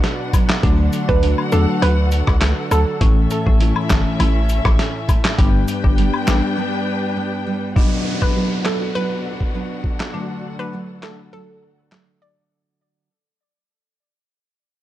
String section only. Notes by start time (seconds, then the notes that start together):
Already playing: D4 F#4 B4 F#5
0.63 F#4 A4 F#5
3.01 C#4 E4 E5
5.39 D4 G4 B4 G5
7.76 D4 F#4 B4 F#5
10.14 A4